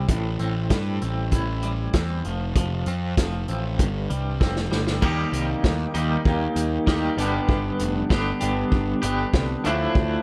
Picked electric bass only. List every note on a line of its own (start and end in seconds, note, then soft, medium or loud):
0.08 0.36 A1 medium
0.40 0.67 A1 medium
0.70 0.98 G2 medium
1.02 1.29 A1 medium
1.32 1.87 A1 medium
1.94 2.21 E2 medium
2.25 2.52 F1 medium
2.55 2.83 F1 medium
2.86 3.14 F2 medium
3.17 3.45 F1 medium
3.48 3.81 A1 medium
3.79 4.06 G1 medium
4.10 4.38 C2 medium
4.41 4.68 F1 medium
4.72 4.99 G1 medium
5.03 5.24 D#2 medium
5.32 5.54 C2 medium
5.63 5.85 D#2 medium
5.95 6.16 D#2 medium
6.25 6.46 D#2 medium
6.56 6.77 D#2 medium
6.87 7.08 D#2 medium
7.17 7.38 G1 medium
7.49 7.70 G1 medium
7.80 8.01 F1 medium
8.11 8.32 G1 medium
8.42 8.63 G1 medium
8.72 8.93 G1 medium
9.03 9.24 G1 medium
9.33 9.54 C2 medium
9.66 9.86 D2 medium
9.95 10.16 D2 medium